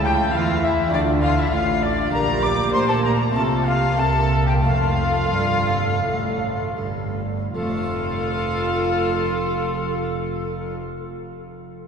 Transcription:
0.00 0.33 C#2 loud
0.00 0.30 C#3 medium
0.00 0.33 C#3 loud
0.00 0.87 A3 medium
0.00 0.88 E4 medium
0.00 0.91 E4 loud
0.04 0.13 G4 medium
0.04 0.33 G5 loud
0.04 0.11 G5 loud
0.33 0.92 E2 loud
0.33 0.92 E3 loud
0.33 0.89 E3 medium
0.33 0.63 F4 loud
0.33 0.63 F5 loud
0.33 0.66 F5 loud
0.63 0.92 E4 loud
0.63 0.72 E5 loud
0.63 0.93 E5 loud
0.88 2.06 A3 medium
0.88 2.07 D4 medium
0.88 2.07 F4 medium
0.93 1.51 D2 medium
0.93 1.48 D3 medium
0.93 1.51 D3 medium
0.93 1.23 D4 loud
0.93 1.51 F4 medium
0.93 1.01 D5 loud
0.93 1.01 D5 medium
1.22 1.38 F4 loud
1.22 1.37 F5 loud
1.22 1.40 F5 loud
1.38 1.53 E4 loud
1.38 1.53 E5 loud
1.38 1.55 E5 medium
1.52 2.11 A1 loud
1.52 2.08 A2 medium
1.52 2.11 A2 medium
1.52 2.11 F4 medium
1.52 1.82 F4 medium
1.52 1.82 F5 loud
1.52 1.84 F5 medium
1.81 2.12 D4 medium
1.81 2.12 D5 loud
1.81 2.13 D5 loud
2.08 2.69 A#1 medium
2.08 2.69 A#2 medium
2.08 2.69 A#2 loud
2.08 3.29 D4 medium
2.08 3.30 G4 medium
2.08 3.31 G4 loud
2.08 2.42 A#4 loud
2.13 2.44 A#5 loud
2.13 2.42 A#5 loud
2.42 2.73 D5 loud
2.42 2.73 D6 loud
2.42 2.72 D6 loud
2.72 3.35 A#2 medium
2.72 3.35 A#3 medium
2.72 3.31 A#3 medium
2.72 2.88 C5 loud
2.72 2.79 C6 loud
2.72 2.88 C6 loud
2.88 3.04 A4 loud
2.88 2.95 A5 loud
2.88 3.04 A5 medium
3.03 3.11 A#4 loud
3.03 3.34 A#5 loud
3.03 3.11 A#5 medium
3.30 3.94 A3 medium
3.30 3.95 C4 medium
3.30 3.96 F4 medium
3.30 3.65 A4 medium
3.30 3.66 A5 loud
3.34 3.97 C2 medium
3.34 3.97 C3 medium
3.34 3.95 C3 medium
3.34 3.98 F4 medium
3.34 3.42 A5 loud
3.65 3.98 F4 medium
3.65 3.98 F5 loud
3.65 4.01 F5 loud
3.94 4.60 A#3 medium
3.94 4.60 C4 medium
3.94 4.62 E4 medium
3.94 4.64 A#4 medium
3.98 4.63 C2 medium
3.98 4.63 C3 medium
3.98 4.61 C3 medium
3.98 4.48 A4 loud
3.98 4.48 A5 loud
4.48 4.65 G4 medium
4.48 4.54 G5 medium
4.48 4.65 G5 medium
4.60 5.29 A3 medium
4.60 5.29 C4 medium
4.60 7.49 F4 medium
4.64 5.33 F1 medium
4.64 5.33 F2 medium
4.64 5.29 F2 medium
4.64 6.77 F4 loud
4.64 7.24 A4 medium
4.64 6.73 F5 loud
5.33 6.02 G1 medium
5.33 6.02 G2 medium
5.33 6.00 G2 medium
6.03 6.75 A1 medium
6.03 6.75 A2 medium
6.03 6.73 A2 medium
6.76 7.52 G1 medium
6.76 7.52 G2 medium
6.76 7.50 G2 medium
7.54 10.75 F1 medium
7.54 10.75 F2 medium
7.54 10.76 F3 medium
7.54 10.75 F4 medium
7.54 10.76 F4 medium
7.54 10.76 A4 medium
7.54 10.76 F5 loud
7.61 10.83 A3 medium
7.69 10.90 C4 medium
7.76 10.97 F4 medium
7.82 11.04 C5 medium

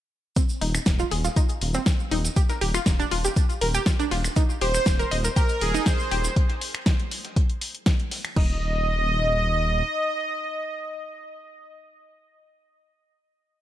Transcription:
0.36 0.40 C4 loud
0.36 kick loud
0.36 closed hi-hat medium
0.36 shaker medium
0.49 shaker soft
0.61 0.79 D#1 loud
0.61 0.67 D#4 medium
0.61 closed hi-hat medium
0.61 open hi-hat loud
0.75 finger snap medium
0.75 closed hi-hat medium
0.75 closed hi-hat soft
0.75 shaker medium
0.86 1.04 D#1 medium
0.86 kick loud
0.86 snare loud
0.86 closed hi-hat medium
0.86 shaker medium
0.99 1.07 F4 loud
0.99 closed hi-hat soft
0.99 shaker soft
1.11 1.29 D#1 medium
1.11 1.17 G#4 medium
1.11 closed hi-hat medium
1.11 open hi-hat medium
1.25 1.27 F4 medium
1.25 snare soft
1.25 closed hi-hat medium
1.25 shaker medium
1.36 1.40 D#4 loud
1.36 kick loud
1.36 closed hi-hat medium
1.36 shaker medium
1.49 closed hi-hat soft
1.49 shaker soft
1.61 1.79 D#1 medium
1.61 closed hi-hat medium
1.61 open hi-hat loud
1.74 1.82 C4 loud
1.74 snare medium
1.74 closed hi-hat medium
1.74 shaker medium
1.86 kick loud
1.86 snare loud
1.86 closed hi-hat medium
1.86 shaker medium
1.99 shaker soft
2.11 2.29 D#1 medium
2.11 2.17 D#4 medium
2.11 closed hi-hat medium
2.11 open hi-hat loud
2.25 snare medium
2.25 closed hi-hat medium
2.25 shaker medium
2.36 2.42 G4 medium
2.36 kick loud
2.36 closed hi-hat medium
2.36 shaker medium
2.49 2.54 A#4 medium
2.49 snare soft
2.49 closed hi-hat soft
2.49 shaker soft
2.61 2.79 D#1 loud
2.61 2.67 G4 medium
2.61 closed hi-hat medium
2.61 open hi-hat loud
2.74 2.82 F4 loud
2.74 finger snap medium
2.74 closed hi-hat medium
2.74 shaker medium
2.86 3.04 D#1 medium
2.86 kick loud
2.86 snare loud
2.86 closed hi-hat medium
2.86 shaker medium
3.00 3.04 D4 loud
3.00 closed hi-hat soft
3.00 shaker soft
3.11 3.29 D#1 medium
3.11 3.17 F4 medium
3.11 closed hi-hat medium
3.11 open hi-hat loud
3.25 3.32 G4 medium
3.25 snare medium
3.25 closed hi-hat medium
3.25 shaker medium
3.36 kick loud
3.36 closed hi-hat medium
3.36 shaker medium
3.50 closed hi-hat soft
3.50 shaker soft
3.61 3.79 D#1 medium
3.61 3.67 A#4 medium
3.61 closed hi-hat medium
3.61 open hi-hat loud
3.74 3.82 G4 loud
3.74 closed hi-hat medium
3.74 shaker medium
3.86 3.90 F4 medium
3.86 kick loud
3.86 snare loud
3.86 closed hi-hat medium
3.86 shaker medium
4.00 4.04 D4 loud
4.00 closed hi-hat soft
4.00 shaker soft
4.11 4.29 D#1 medium
4.11 4.17 F4 medium
4.11 snare medium
4.11 open hi-hat medium
4.24 finger snap medium
4.24 closed hi-hat medium
4.24 shaker medium
4.36 4.40 D#4 loud
4.36 kick loud
4.36 closed hi-hat medium
4.36 shaker medium
4.50 shaker soft
4.61 4.79 D#1 loud
4.61 4.67 G4 medium
4.61 5.08 C5 loud
4.61 closed hi-hat medium
4.61 open hi-hat loud
4.74 finger snap medium
4.74 closed hi-hat soft
4.74 shaker medium
4.86 5.04 D#1 medium
4.86 kick loud
4.86 snare loud
4.86 closed hi-hat medium
4.86 shaker medium
4.99 5.07 A#4 loud
4.99 closed hi-hat soft
4.99 shaker soft
5.11 5.29 D#1 medium
5.11 5.17 D#5 medium
5.11 closed hi-hat medium
5.11 open hi-hat loud
5.24 5.27 A#4 medium
5.24 snare soft
5.24 closed hi-hat medium
5.24 shaker medium
5.36 5.40 G4 loud
5.36 5.62 A#4 loud
5.36 kick loud
5.36 closed hi-hat medium
5.36 shaker medium
5.49 closed hi-hat soft
5.49 shaker soft
5.61 5.79 D#1 medium
5.61 5.87 G#4 loud
5.61 closed hi-hat medium
5.61 open hi-hat loud
5.74 5.82 D#4 loud
5.74 snare medium
5.74 closed hi-hat soft
5.74 shaker medium
5.86 6.22 C5 loud
5.86 kick loud
5.86 snare loud
5.86 closed hi-hat medium
5.86 shaker medium
6.00 shaker soft
6.11 6.29 D#1 loud
6.11 6.17 G4 medium
6.11 closed hi-hat medium
6.11 open hi-hat loud
6.24 snare medium
6.24 closed hi-hat medium
6.24 shaker medium
6.36 kick loud
6.36 closed hi-hat medium
6.50 snare soft
6.50 closed hi-hat soft
6.61 closed hi-hat medium
6.61 open hi-hat loud
6.75 finger snap medium
6.75 closed hi-hat medium
6.86 kick loud
6.86 snare loud
6.86 closed hi-hat medium
7.00 closed hi-hat soft
7.11 closed hi-hat medium
7.11 open hi-hat loud
7.25 snare medium
7.25 closed hi-hat soft
7.36 kick loud
7.36 closed hi-hat medium
7.50 closed hi-hat soft
7.61 closed hi-hat medium
7.61 open hi-hat loud
7.75 closed hi-hat medium
7.86 kick loud
7.86 snare loud
7.86 closed hi-hat medium
8.00 closed hi-hat soft
8.11 snare medium
8.11 open hi-hat loud
8.11 open hi-hat medium
8.25 finger snap medium
8.25 closed hi-hat medium
8.36 9.82 D#1 medium
8.36 8.60 D#4 medium
8.36 11.71 D#5 loud
8.36 kick loud
8.36 crash medium

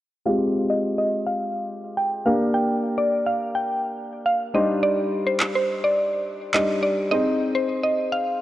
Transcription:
0.26 2.22 G#3 medium
0.26 2.22 C4 medium
0.26 2.22 F4 medium
0.26 2.22 G4 medium
0.26 0.36 F5 loud
0.70 0.79 D#5 medium
0.98 1.07 D#5 medium
1.26 1.66 F5 medium
1.97 2.07 G5 medium
2.26 4.50 A#3 medium
2.26 4.50 D4 medium
2.26 4.51 G4 medium
2.26 4.51 A#4 medium
2.26 2.36 F5 medium
2.54 2.65 G5 loud
2.98 3.07 D5 medium
3.27 3.36 F5 medium
3.55 3.95 G5 medium
4.26 4.36 F5 medium
4.54 6.50 G3 medium
4.54 6.50 D4 medium
4.54 6.50 D#4 medium
4.54 6.50 G4 medium
4.54 6.51 C5 medium
4.54 4.65 D#5 medium
4.83 4.93 D5 loud
5.27 5.36 C5 medium
5.40 clap loud
5.55 5.64 C5 medium
5.84 6.23 D5 medium
6.54 7.11 G3 soft
6.54 7.11 D4 soft
6.54 7.10 D#4 soft
6.54 7.12 G4 soft
6.54 7.11 C5 medium
6.54 6.65 D#5 medium
6.54 clap loud
6.83 6.93 D5 medium
7.11 8.41 C4 medium
7.11 8.41 D#4 medium
7.11 8.41 G#4 medium
7.11 8.41 C5 medium
7.11 7.22 D#5 loud
7.55 7.64 C5 medium
7.83 7.93 D#5 medium
8.12 8.41 F5 medium

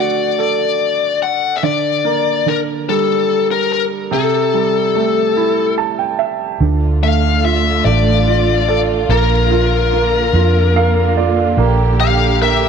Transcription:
0.00 1.58 D3 medium
0.00 1.17 A3 soft
0.00 1.59 F#4 soft
0.00 0.39 D5 medium
0.39 1.59 A4 soft
0.39 1.18 D5 medium
1.23 1.57 F#5 medium
1.56 1.63 E5 medium
1.63 2.45 D3 medium
1.63 2.49 D5 medium
2.05 3.66 A#3 soft
2.46 4.08 D3 soft
2.46 2.59 A#4 medium
2.89 4.09 G3 soft
2.89 3.46 A4 medium
3.51 3.71 A#4 medium
3.72 3.83 A#4 medium
4.11 6.56 C3 medium
4.11 5.74 A4 medium
4.54 6.15 G3 soft
4.95 6.57 A3 soft
5.37 6.57 E4 soft
5.78 5.97 A5 soft
5.99 6.18 G5 soft
6.19 6.57 E5 medium
6.60 7.81 D2 medium
6.60 9.05 D3 soft
6.60 9.07 D3 medium
6.60 9.07 A3 medium
6.60 11.54 F4 medium
7.03 7.85 A3 soft
7.03 7.45 F5 medium
7.44 8.26 F4 soft
7.44 7.85 E5 medium
7.85 9.05 A1 medium
7.85 9.06 A3 soft
7.85 8.67 D5 medium
8.27 9.07 F4 soft
8.69 9.08 A4 soft
8.69 8.80 D5 medium
9.09 10.29 A#1 medium
9.09 12.69 D3 medium
9.09 12.69 A#3 medium
9.09 9.92 A#3 medium
9.09 11.13 A#4 medium
9.51 10.33 F4 soft
9.93 10.75 A#3 soft
10.33 11.54 F2 medium
10.33 11.16 F4 soft
10.76 11.56 A#3 soft
10.76 11.14 F5 medium
11.17 11.57 F4 soft
11.17 11.55 D5 medium
11.57 12.69 A#1 medium
11.57 12.69 A#3 medium
11.57 12.69 G4 medium
12.00 12.69 G4 soft
12.00 12.38 F5 medium
12.41 12.69 A#4 medium
12.41 12.69 E5 medium

